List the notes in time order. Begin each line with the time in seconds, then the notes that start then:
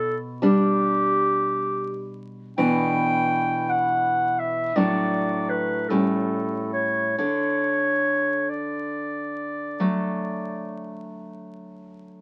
Already playing: B2 A4
0.42 G3 D4 G4
2.58 B2 E3 D4 G5
3.69 F#5
4.39 E5
4.76 A2 F#3 D4 D5
5.49 B4
5.89 A2 G3 C#4 A4
6.73 C#5
7.18 D3 C#5
8.49 D5
9.80 F#3 A3